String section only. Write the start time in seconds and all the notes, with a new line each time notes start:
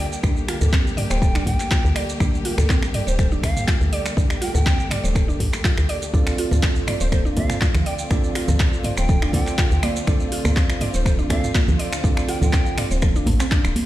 Already playing: D3 G3 A3 A#3 G4
6.14 D3 F3 C4 F4